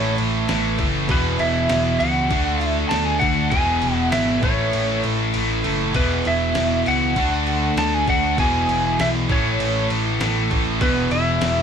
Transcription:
0.00 0.14 A1 medium
0.00 0.47 A2 loud
0.00 0.48 E3 medium
0.00 0.48 A3 medium
0.00 0.14 C#4 medium
0.00 0.14 C#5 medium
0.18 0.44 A1 medium
0.18 crash medium
0.48 0.75 A1 medium
0.48 1.07 A2 medium
0.48 1.08 E3 medium
0.48 1.08 A3 medium
0.48 snare loud
0.48 crash medium
0.78 1.05 F#1 medium
0.78 1.09 A2 medium
0.78 1.08 E3 medium
0.78 1.07 A3 medium
0.78 kick medium
0.78 crash medium
1.08 1.35 E1 loud
1.08 1.99 E2 medium
1.08 1.99 B2 loud
1.08 2.00 E3 loud
1.08 1.37 B3 medium
1.08 1.42 B4 loud
1.08 kick loud
1.08 crash medium
1.38 1.66 E1 loud
1.38 1.96 E4 medium
1.38 2.03 E5 medium
1.38 crash medium
1.69 1.96 E1 medium
1.69 snare loud
1.69 crash medium
1.99 2.31 C#2 loud
1.99 2.30 B2 medium
1.99 2.29 E3 medium
1.99 2.62 F#4 medium
1.99 2.67 F#5 loud
1.99 crash medium
2.03 2.31 E2 medium
2.31 2.82 D2 medium
2.31 3.20 D3 medium
2.31 3.21 A3 medium
2.31 3.21 D4 loud
2.31 kick medium
2.31 crash medium
2.61 2.87 E4 medium
2.61 crash medium
2.67 2.89 E5 loud
2.89 3.18 D2 medium
2.89 3.05 A4 medium
2.89 3.05 A5 loud
2.89 snare loud
2.89 crash medium
3.05 3.21 G#4 medium
3.05 3.19 G#5 loud
3.19 3.48 D2 loud
3.19 3.51 D4 medium
3.19 3.49 F#4 medium
3.19 3.50 F#5 medium
3.19 kick medium
3.19 crash medium
3.23 3.52 D3 medium
3.23 3.51 A3 medium
3.50 3.78 E1 medium
3.50 4.42 E2 medium
3.50 4.42 B2 loud
3.50 3.95 G#4 medium
3.50 3.94 G#5 loud
3.50 kick loud
3.50 crash medium
3.55 4.43 E3 loud
3.82 4.09 E1 loud
3.82 crash medium
3.94 4.08 F#4 medium
3.94 4.08 F#5 loud
4.11 4.39 G#1 medium
4.11 4.40 E4 medium
4.11 4.43 E5 medium
4.11 snare loud
4.11 crash medium
4.42 4.69 A1 medium
4.42 5.33 A2 medium
4.42 5.34 E3 loud
4.42 4.99 C#4 medium
4.42 5.00 C#5 medium
4.42 kick loud
4.42 crash medium
4.46 5.34 A3 loud
4.73 5.00 A1 medium
4.73 crash medium
5.04 5.30 A1 medium
5.04 crash medium
5.34 5.61 A1 medium
5.34 5.93 A2 medium
5.34 5.94 E3 medium
5.34 5.95 A3 medium
5.34 crash medium
5.63 5.91 F#1 medium
5.63 5.94 A2 medium
5.63 5.93 E3 medium
5.63 5.93 A3 medium
5.63 crash medium
5.94 6.21 E1 medium
5.94 6.84 E2 medium
5.94 6.85 B2 medium
5.94 6.84 E3 loud
5.94 6.24 B3 medium
5.94 6.27 B4 medium
5.94 kick loud
5.94 crash medium
6.25 6.52 E1 medium
6.25 6.83 E4 medium
6.25 6.89 E5 medium
6.25 crash medium
6.55 6.82 E1 medium
6.55 snare loud
6.55 crash medium
6.85 7.12 C#2 medium
6.85 7.16 E2 medium
6.85 7.15 B2 medium
6.85 7.15 E3 medium
6.85 7.74 F#4 medium
6.85 7.78 F#5 loud
6.85 crash medium
7.16 7.68 D2 medium
7.16 8.06 D3 medium
7.16 8.07 A3 medium
7.16 8.07 D4 loud
7.16 kick medium
7.16 crash medium
7.47 crash medium
7.76 8.03 D2 medium
7.76 7.94 A4 medium
7.76 7.94 A5 loud
7.76 snare loud
7.76 crash medium
7.94 8.08 G#4 medium
7.94 8.09 G#5 loud
8.08 8.34 D2 loud
8.08 8.38 D3 medium
8.08 8.37 A3 medium
8.08 8.37 D4 medium
8.08 8.36 F#4 medium
8.08 8.39 F#5 medium
8.08 kick medium
8.08 crash medium
8.38 8.64 E1 medium
8.38 9.28 E2 medium
8.38 9.29 B2 loud
8.38 9.29 E3 loud
8.38 8.96 G#4 medium
8.38 9.02 G#5 loud
8.38 kick loud
8.38 crash medium
8.69 8.95 E1 loud
8.69 crash medium
8.99 9.25 B1 loud
8.99 9.09 E4 medium
8.99 9.09 E5 medium
8.99 snare loud
8.99 crash medium
9.29 9.55 A1 loud
9.29 10.19 A2 medium
9.29 10.19 E3 loud
9.29 10.20 A3 loud
9.29 9.87 C#4 medium
9.29 9.88 C#5 medium
9.29 kick loud
9.29 crash medium
9.60 9.86 A1 medium
9.60 crash medium
9.90 10.17 A1 medium
9.90 crash medium
10.20 10.46 A1 medium
10.20 10.79 A2 medium
10.20 10.80 E3 medium
10.20 10.81 A3 medium
10.20 snare loud
10.20 crash medium
10.50 10.77 A1 loud
10.50 10.81 A2 medium
10.50 10.80 E3 medium
10.50 10.79 A3 medium
10.50 kick medium
10.50 crash medium
10.81 11.07 E1 loud
10.81 11.62 E2 medium
10.81 11.62 B2 medium
10.81 11.62 E3 loud
10.81 11.10 B3 medium
10.81 11.10 B4 medium
10.81 kick loud
10.81 crash medium
11.11 11.37 E1 medium
11.11 11.62 E4 medium
11.11 11.62 E5 medium
11.11 crash medium
11.41 11.62 E1 loud
11.41 snare loud
11.41 crash medium

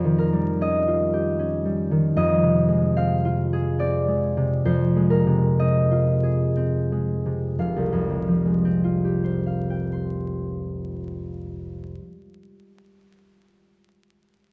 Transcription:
0.00 2.16 F2 soft
0.00 0.86 F4 soft
0.00 0.48 C5 medium
0.00 0.36 D5 medium
0.00 0.60 D#5 medium
0.00 2.11 F5 medium
0.04 1.90 D#3 soft
0.18 2.19 A#4 medium
0.33 1.64 G3 soft
0.61 1.38 C#4 soft
0.61 2.15 D#5 medium
0.88 3.24 F4 soft
1.13 2.19 G4 soft
1.39 2.19 C#4 soft
1.65 2.19 G3 soft
1.91 2.19 D#3 soft
2.16 4.64 F2 medium
2.16 5.58 D#5 medium
2.42 4.36 C3 soft
2.68 4.07 G#3 soft
2.96 3.78 C4 soft
2.96 6.87 F5 medium
3.25 5.90 F4 soft
3.53 6.22 G#4 soft
3.79 5.58 C4 soft
3.79 5.31 D5 medium
4.08 4.95 G#3 soft
4.37 5.25 C3 soft
4.65 7.63 F2 medium
4.65 8.56 C5 medium
4.96 6.91 G#3 soft
5.10 7.63 A#4 medium
5.27 7.24 C3 soft
5.59 6.55 C4 soft
5.59 7.64 D#5 medium
5.91 8.83 F4 soft
6.23 10.13 G#4 soft
6.56 8.63 C4 soft
6.92 8.44 G#3 soft
7.26 7.63 C3 soft
7.59 11.90 F1 soft
7.59 9.45 F5 soft
7.76 11.96 C2 soft
7.93 11.95 F2 soft
8.10 12.00 C3 soft
8.28 12.10 F3 soft
8.45 11.95 G#3 soft
8.65 11.96 C4 soft
8.84 11.95 F4 soft
9.05 11.96 G4 soft
9.24 11.95 C5 soft
9.46 11.95 F5 soft
9.70 11.96 G5 soft
9.93 11.96 C6 soft

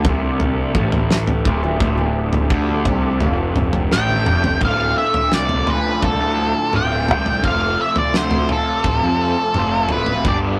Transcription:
0.00 4.59 F3 medium
0.00 4.59 A3 medium
0.00 4.59 D4 medium
0.00 4.59 G4 medium
0.00 4.59 A4 medium
0.00 low conga medium
0.05 0.71 C2 medium
0.05 0.74 C3 loud
0.05 kick loud
0.05 floor tom medium
0.40 floor tom medium
0.75 1.42 A1 medium
0.75 1.45 A2 medium
0.75 kick loud
0.75 mid tom medium
0.92 floor tom medium
1.11 snare medium
1.27 floor tom medium
1.45 1.78 D1 loud
1.45 1.80 D2 loud
1.45 kick loud
1.45 low conga medium
1.64 high conga medium
1.80 2.47 D1 medium
1.80 2.50 D2 loud
1.80 kick loud
1.80 floor tom medium
1.98 high conga medium
2.33 floor tom medium
2.50 2.84 D2 medium
2.50 2.86 D3 medium
2.50 kick loud
2.50 low conga medium
2.69 high conga medium
2.85 3.19 C2 medium
2.85 3.21 C3 loud
2.85 kick loud
2.85 floor tom medium
2.85 low conga medium
3.20 3.88 F1 medium
3.20 3.91 F2 loud
3.20 floor tom medium
3.20 high conga medium
3.56 floor tom medium
3.56 mid tom medium
3.56 low conga medium
3.73 floor tom medium
3.92 4.25 A1 medium
3.92 4.26 A2 loud
3.92 4.59 G5 medium
3.92 snare medium
4.09 high conga medium
4.26 4.60 F1 medium
4.26 4.61 F2 medium
4.26 mid tom medium
4.26 low conga medium
4.44 floor tom medium
4.44 high conga medium
4.60 4.93 D1 medium
4.60 5.65 D2 medium
4.60 5.66 A2 medium
4.60 5.66 D3 medium
4.60 10.21 F3 medium
4.60 10.21 A3 medium
4.60 7.40 D4 medium
4.60 7.40 F4 medium
4.60 10.21 A4 medium
4.60 kick loud
4.60 floor tom medium
4.64 5.68 A3 medium
4.64 5.67 F4 medium
4.64 4.97 F5 medium
4.98 5.33 E5 medium
5.14 floor tom medium
5.32 5.65 C2 medium
5.32 5.70 D5 medium
5.32 snare medium
5.49 floor tom medium
5.67 6.72 D2 medium
5.67 6.72 A2 medium
5.67 6.72 D3 medium
5.67 6.71 A3 medium
5.67 6.77 F4 medium
5.67 6.04 B4 medium
5.67 floor tom medium
6.02 6.19 C2 medium
6.02 6.76 A4 medium
6.02 kick loud
6.02 floor tom medium
6.21 6.52 D2 medium
6.73 7.11 D1 medium
6.73 7.42 D2 medium
6.73 7.42 A2 medium
6.73 7.43 D3 medium
6.73 7.43 A3 medium
6.73 7.46 F4 medium
6.73 7.41 G5 medium
6.73 mid tom medium
7.09 7.41 C2 medium
7.09 floor tom medium
7.26 floor tom medium
7.43 7.76 F1 medium
7.43 8.47 F2 medium
7.43 8.47 C3 medium
7.43 8.51 F3 loud
7.43 8.48 A3 medium
7.43 10.23 C4 medium
7.43 8.48 C4 medium
7.43 10.60 F4 medium
7.43 8.48 F4 medium
7.43 7.81 F5 medium
7.43 kick loud
7.43 floor tom medium
7.81 7.98 E5 medium
7.96 8.16 D5 medium
7.96 floor tom medium
8.14 8.46 D2 medium
8.14 8.48 C5 medium
8.14 snare medium
8.31 floor tom medium
8.49 9.52 F2 medium
8.49 9.54 C3 medium
8.49 9.54 F3 medium
8.49 9.54 A3 medium
8.49 9.53 C4 medium
8.49 9.53 F4 medium
8.49 9.92 A4 medium
8.49 floor tom medium
8.84 9.01 D1 medium
8.84 kick loud
8.84 floor tom medium
9.03 9.34 F2 medium
9.53 9.90 F1 loud
9.53 10.23 F2 medium
9.53 10.23 C3 medium
9.53 10.24 F3 medium
9.53 10.24 A3 medium
9.53 10.24 C4 medium
9.53 mid tom medium
9.58 10.25 F4 medium
9.89 10.22 D1 medium
9.89 10.28 B4 medium
9.89 floor tom medium
10.06 floor tom medium
10.24 10.57 G1 medium
10.24 10.60 G2 medium
10.24 10.60 D3 medium
10.24 10.60 G3 medium
10.24 10.60 B3 medium
10.24 10.60 D4 medium
10.24 10.60 D4 loud
10.24 10.60 G4 medium
10.24 10.60 G4 loud
10.24 10.37 D5 medium
10.24 kick loud
10.24 floor tom medium

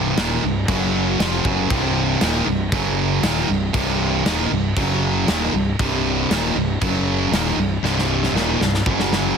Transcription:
0.00 0.14 C1 medium
0.00 0.17 C2 loud
0.00 0.17 G2 medium
0.00 0.17 C3 loud
0.17 0.41 D#1 medium
0.17 0.42 D#2 medium
0.17 0.42 A#2 loud
0.17 0.43 D#3 medium
0.17 snare loud
0.17 crash medium
0.43 0.67 C1 medium
0.43 0.64 C2 medium
0.43 0.64 G2 medium
0.68 1.16 F#1 loud
0.68 1.19 F#2 loud
0.68 1.19 C#3 loud
0.68 1.19 F#3 loud
0.68 kick loud
0.68 crash medium
1.19 1.43 F1 loud
1.19 1.44 F2 loud
1.19 1.44 C3 medium
1.19 1.45 F3 loud
1.19 snare loud
1.19 crash medium
1.45 1.69 F#1 medium
1.45 1.70 F#2 medium
1.45 1.70 C#3 medium
1.45 1.71 F#3 medium
1.45 kick loud
1.70 2.18 C1 medium
1.70 2.21 C2 loud
1.70 2.21 G2 loud
1.70 2.21 C3 loud
1.70 kick loud
1.70 crash medium
2.21 2.45 D#1 medium
2.21 2.45 D#2 medium
2.21 2.46 A#2 medium
2.21 2.47 D#3 medium
2.21 snare loud
2.21 crash medium
2.45 2.70 C1 medium
2.45 2.67 C2 medium
2.45 2.67 G2 medium
2.72 3.20 F#1 medium
2.72 3.23 F#2 loud
2.72 3.23 C#3 loud
2.72 3.23 F#3 loud
2.72 kick loud
2.72 crash medium
3.23 3.47 D#1 loud
3.23 3.48 D#2 medium
3.23 3.48 A#2 loud
3.23 3.49 D#3 loud
3.23 snare loud
3.23 crash medium
3.48 3.73 C1 medium
3.48 3.69 C2 medium
3.48 3.69 G2 medium
3.74 4.22 C1 medium
3.74 4.25 C2 loud
3.74 4.25 G2 loud
3.74 4.25 C3 loud
3.74 kick loud
3.74 crash medium
4.25 4.50 D#1 medium
4.25 4.50 D#2 loud
4.25 4.51 A#2 medium
4.25 4.51 D#3 loud
4.25 snare loud
4.25 crash medium
4.51 4.75 C1 medium
4.51 4.72 C2 medium
4.51 4.72 G2 medium
4.76 5.24 F#1 medium
4.76 5.27 F#2 loud
4.76 5.28 C#3 loud
4.76 5.28 F#3 loud
4.76 kick loud
4.76 crash medium
5.27 5.52 D#1 loud
5.27 5.53 D#2 loud
5.27 5.53 A#2 medium
5.27 5.53 D#3 loud
5.27 snare loud
5.27 crash medium
5.53 5.77 C1 medium
5.53 5.75 C2 medium
5.53 5.75 G2 medium
5.79 6.27 C1 medium
5.79 6.30 C2 loud
5.79 6.30 G2 loud
5.79 6.30 C3 loud
5.79 kick loud
5.79 crash medium
6.30 6.54 D#1 medium
6.30 6.56 D#2 medium
6.30 6.56 A#2 loud
6.30 6.56 D#3 loud
6.30 snare loud
6.30 crash medium
6.55 6.79 C1 medium
6.55 6.77 C2 medium
6.55 6.77 G2 medium
6.81 7.29 F#1 medium
6.81 7.32 F#2 loud
6.81 7.32 C#3 loud
6.81 7.32 F#3 loud
6.81 kick loud
6.81 crash medium
7.31 7.56 D#1 loud
7.31 7.57 D#2 medium
7.31 7.58 A#2 medium
7.31 7.58 D#3 loud
7.31 snare loud
7.31 crash medium
7.57 7.81 C1 medium
7.57 7.78 C2 medium
7.57 7.79 G2 medium
7.82 8.31 C1 medium
7.82 8.34 C2 loud
7.82 8.34 G2 loud
7.82 8.35 C3 loud
7.82 snare medium
7.98 snare medium
8.23 snare medium
8.33 8.58 D#1 medium
8.33 8.60 D#2 medium
8.33 8.60 A#2 loud
8.33 8.60 D#3 medium
8.33 snare medium
8.59 8.84 C1 medium
8.59 8.81 C2 medium
8.59 8.81 G2 medium
8.59 snare medium
8.74 snare medium
8.86 9.34 F#1 medium
8.86 9.37 F#2 medium
8.86 9.37 C#3 medium
8.86 9.37 F#3 loud
8.86 kick loud
8.99 snare medium
9.13 snare loud

